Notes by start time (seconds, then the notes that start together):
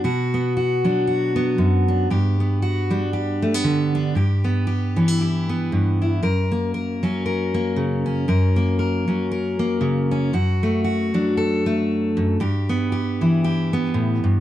0.04 B2 F#4
0.34 B3
0.57 F#4
0.84 F#3 D4
1.07 F#4
1.36 B3
1.58 F#2
1.88 D4
2.10 G2 G4
2.40 B3
2.62 F#4
2.90 G3 D4
3.13 G4
3.42 A3
3.54 B3
3.64 D3
3.95 D4
4.15 G2 G4
4.44 B3
4.67 G4
4.96 E3 C#4
5.08 E4
5.21 G4
5.49 B3
5.72 G2
6.02 E4
6.22 F#2 A#4
6.52 A#3
6.74 A#4
7.03 F#3 C#4
7.26 A#4
7.54 A#3
7.76 C#3
8.06 C#4
8.28 F#2 A#4
8.56 A#3
8.79 A#4
9.08 F#3 C#4
9.31 A#4
9.59 A#3
9.81 C#3
10.11 C#4
10.33 F#2 F#4
10.63 A3
10.84 F#4
11.14 F#3 D4
11.37 A4
11.66 A3
12.17 F#2
12.40 G2 G4
12.69 B3
12.92 G4
13.21 E3 E4
13.44 G4
13.73 B3
13.94 A2
14.24 G2